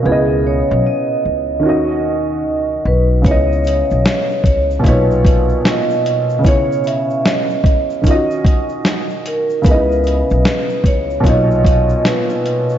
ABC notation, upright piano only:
X:1
M:4/4
L:1/8
Q:"Swing 16ths" 1/4=75
K:C#dor
V:1 name="Upright piano"
[C,B,Ed]4 [D,CFd]4 | [C,B,Ed]4 [A,,B,,Dc]4 | [C,B,Ec]4 [D,C^EFd]4 | [C,B,DEd]4 [A,,B,,Dc]4 |]